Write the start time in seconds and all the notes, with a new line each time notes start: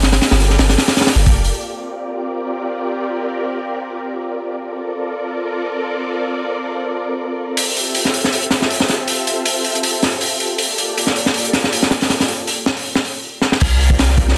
Already playing: G1
0.02 A#3 F4 G4 A4 D5, snare, open hi-hat
0.12 snare, open hi-hat
0.21 snare, open hi-hat
0.31 G1, snare, open hi-hat
0.40 snare, open hi-hat
0.50 snare
0.59 G1, snare, open hi-hat
0.69 snare, open hi-hat
0.78 snare, open hi-hat
0.88 snare, open hi-hat
0.97 snare, open hi-hat
1.01 snare, open hi-hat
1.07 A#3 F4 G4 A4 D5, snare, open hi-hat
1.16 G1, open hi-hat
1.26 kick, open hi-hat
1.34 F1
1.44 open hi-hat
1.53 C4 F4 G4 A#4 D5
4.55 C4 F4 A4 A#4 D5
7.57 C4 F4 G4 A4 E5, open hi-hat
7.76 open hi-hat
7.95 open hi-hat
8.05 snare
8.14 open hi-hat
8.24 snare
8.32 open hi-hat
8.42 closed hi-hat
8.51 snare, open hi-hat
8.62 snare
8.70 open hi-hat
8.80 snare
8.88 snare, open hi-hat
9.08 open hi-hat
9.27 open hi-hat
9.45 open hi-hat
9.64 open hi-hat
9.75 closed hi-hat
9.83 open hi-hat
10.02 snare, open hi-hat
10.21 open hi-hat
10.40 open hi-hat
10.58 A#3 F4 G4 A4 D5, open hi-hat
10.78 open hi-hat
10.97 open hi-hat
11.07 snare
11.16 open hi-hat
11.26 snare
11.34 open hi-hat
11.45 closed hi-hat
11.53 snare, open hi-hat
11.64 snare
11.73 open hi-hat
11.83 snare
11.91 snare, open hi-hat
12.01 snare, open hi-hat
12.10 snare, open hi-hat
12.20 snare, open hi-hat
12.28 open hi-hat
12.47 open hi-hat
12.66 snare
12.77 open hi-hat
12.95 snare
13.04 open hi-hat
13.42 snare
13.52 snare
13.60 C2 C4 F4 G4 A#4 D5, kick, open hi-hat, crash
13.81 open hi-hat
13.90 kick
13.99 snare, open hi-hat
14.10 snare
14.17 C2, kick, open hi-hat
14.28 snare